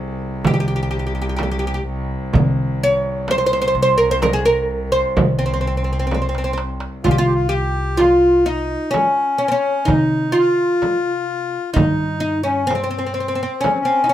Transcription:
Already playing: C2 G#4
0.44 C2 G4, darbuka dum, frame drum
0.54 G4
0.60 G4
0.68 G4
0.76 G4
0.83 G4
0.91 G4
0.99 G4
1.07 G4
1.15 G4
1.22 G4
1.29 G4
1.36 G4, darbuka tek, frame drum
1.43 G4
1.51 G4
1.59 G4
1.67 G4
1.74 G4
2.33 C3, darbuka dum, frame drum
2.57 darbuka ka
2.81 C#5, darbuka ka
3.28 C5, darbuka tek, frame drum
3.38 C5
3.46 C5
3.53 C5
3.62 C5
3.68 C5
3.75 C2
3.83 C5
3.98 A#4
4.11 C5
4.22 A#4, darbuka tek, frame drum
4.33 G#4
4.46 A#4
4.71 darbuka ka
4.92 C5
5.16 C2, frame drum, darbuka dum
5.39 C4
5.46 C4
5.54 C4
5.61 C4
5.67 C4
5.77 C4
5.84 C4
5.93 C4
5.99 C4
6.07 C4
6.11 C4, darbuka tek, frame drum
6.22 C4
6.29 C4
6.35 C4, darbuka ka
6.44 C4
6.53 C4
6.58 darbuka tek
6.80 darbuka ka
7.04 C2 F4, darbuka dum, frame drum
7.11 G4
7.18 F4
7.26 G4, darbuka ka
7.34 F4
7.49 G4, darbuka ka
7.97 F4, darbuka tek, frame drum
8.46 D#4
8.71 darbuka ka
8.91 C#4, darbuka tek, frame drum
9.38 C#4, darbuka ka
9.48 C4 C#4
9.58 C#4
9.85 C3 D#4, darbuka dum, frame drum
9.90 D#4
10.32 F4, darbuka ka
10.39 F4
10.82 darbuka tek, frame drum
11.30 darbuka ka
11.72 D#4 F4
11.76 G2 D#4, frame drum, darbuka dum
12.00 darbuka ka
12.20 D#4
12.43 C#4
12.67 C4, darbuka tek, frame drum
12.75 C4
12.84 C4
12.91 C4
12.99 C4
13.06 C4
13.14 C4
13.20 C4
13.28 C4
13.35 C4
13.43 C4
13.61 C#4, darbuka tek, frame drum
13.71 C4
13.80 C#4
13.85 C4
14.04 D#4
14.09 C#4

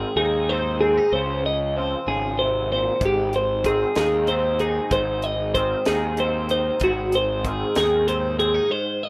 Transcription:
Already playing: G#2 D#3 C4 G#4
0.16 D#2 D#4 G#4
0.49 G#2 C4 C5
0.81 C4 G#4
0.97 D#4
1.12 C#2 C#3 C5
1.46 D#5
1.76 F3 C4 C5
2.07 G#1 C#3 G#4
2.39 C3 C5
2.72 A#2 C5
3.01 G#1 G#2, kick, closed hi-hat
3.06 G4
3.33 C5, closed hi-hat
3.64 D#3 C4 G#4, kick, closed hi-hat
3.95 D#2 D#4 G#4, snare, closed hi-hat
4.27 G#2 C4 C5, closed hi-hat
4.59 D#4 G#4, closed hi-hat
4.91 G#1 G#2 C5, kick, closed hi-hat
5.22 D#5, closed hi-hat
5.54 D#3 C4 C5, kick, closed hi-hat
5.85 D#2 D#4 G#4, snare, closed hi-hat
6.17 G#2 C4 C5, closed hi-hat
6.49 D#4 C5, closed hi-hat
6.80 G#1 G#2, kick, closed hi-hat
6.84 F#4
7.12 C5, closed hi-hat
7.44 D#3 C4 G#4, kick, closed hi-hat
7.75 D#2 D#4 G#4, snare, closed hi-hat
8.07 G#2 C4 C5, closed hi-hat
8.39 C4 G#4, closed hi-hat
8.54 D#4
8.70 G#2 C5
9.03 D#5

